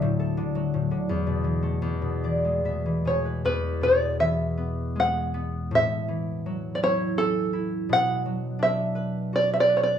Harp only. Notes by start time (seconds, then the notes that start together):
Already playing: D2 A4
0.02 A2
0.20 A4
0.37 D3
0.55 F#3
0.74 A2
0.91 D3
1.09 E2
1.27 B2
1.44 E3
1.63 A3
1.82 E2
2.02 B2
2.24 E3 D5
2.45 G#3
2.65 B2 E5
2.86 E3
3.05 B2 G#5
3.25 B4
3.45 E2
3.81 B2
4.19 E3
4.57 B3
4.96 G#3
5.34 B3
5.71 A2
6.08 E3
6.46 F#3
6.83 E4
7.17 C#4
7.53 E4
7.89 B2
8.25 F#3
8.59 D4
8.95 B4
9.33 F#4
9.69 B4